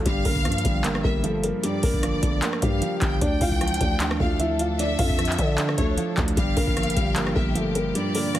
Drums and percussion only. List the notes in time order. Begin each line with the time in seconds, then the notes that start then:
0.06 kick, closed hi-hat
0.25 kick, open hi-hat
0.36 kick
0.45 cross-stick, closed hi-hat
0.52 closed hi-hat
0.58 closed hi-hat
0.65 kick, closed hi-hat
0.84 clap, closed hi-hat
0.95 cross-stick
1.04 kick
1.24 closed hi-hat
1.44 closed hi-hat
1.64 closed hi-hat
1.83 kick, open hi-hat
1.94 kick
2.03 cross-stick, closed hi-hat
2.23 kick, closed hi-hat
2.42 clap, closed hi-hat
2.53 cross-stick
2.62 kick, closed hi-hat
2.82 closed hi-hat
3.02 kick, clap, closed hi-hat
3.21 kick, closed hi-hat
3.41 kick, open hi-hat
3.52 kick
3.61 cross-stick, closed hi-hat
3.68 closed hi-hat
3.74 closed hi-hat
3.81 kick, closed hi-hat
4.00 clap, closed hi-hat
4.11 cross-stick
4.20 kick
4.40 closed hi-hat
4.59 closed hi-hat
4.79 closed hi-hat
4.99 kick, open hi-hat
5.10 kick
5.19 cross-stick, closed hi-hat
5.25 clap, closed hi-hat
5.32 closed hi-hat
5.39 kick, closed hi-hat
5.58 clap, closed hi-hat
5.69 cross-stick
5.78 kick, closed hi-hat
5.98 closed hi-hat
6.17 kick, clap, closed hi-hat
6.28 closed hi-hat
6.37 kick, closed hi-hat
6.57 kick, open hi-hat
6.67 kick
6.77 cross-stick, closed hi-hat
6.83 closed hi-hat
6.90 closed hi-hat
6.97 kick, closed hi-hat
7.16 clap, closed hi-hat
7.27 cross-stick
7.36 kick
7.55 closed hi-hat
7.75 closed hi-hat
7.95 closed hi-hat
8.15 open hi-hat
8.35 cross-stick, closed hi-hat